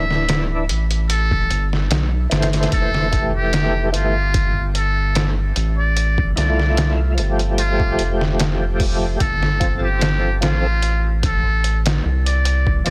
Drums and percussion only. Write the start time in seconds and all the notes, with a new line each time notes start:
0.11 snare
0.29 snare, closed hi-hat
0.69 closed hi-hat
0.91 closed hi-hat
1.10 closed hi-hat
1.31 kick
1.50 closed hi-hat
1.73 snare
1.91 snare, closed hi-hat
2.31 snare, closed hi-hat
2.42 snare, closed hi-hat
2.53 snare, closed hi-hat
2.63 snare, closed hi-hat
2.72 kick, closed hi-hat
2.94 snare
3.13 kick, closed hi-hat
3.53 snare, closed hi-hat
3.94 closed hi-hat
4.34 kick, closed hi-hat
4.75 closed hi-hat
5.15 snare, closed hi-hat
5.56 closed hi-hat
5.97 closed hi-hat
6.18 kick
6.37 snare, closed hi-hat
6.59 snare
6.77 snare, closed hi-hat
7.18 closed hi-hat
7.39 closed hi-hat
7.58 closed hi-hat
7.80 kick
7.99 closed hi-hat
8.21 snare
8.39 snare, closed hi-hat
8.80 kick, open hi-hat
9.20 kick, closed hi-hat
9.43 snare
9.61 kick, closed hi-hat
10.01 snare, closed hi-hat
10.42 snare, closed hi-hat
10.82 closed hi-hat
11.23 kick, closed hi-hat
11.64 closed hi-hat
11.86 snare, closed hi-hat
12.26 closed hi-hat
12.45 closed hi-hat
12.67 kick
12.86 snare, closed hi-hat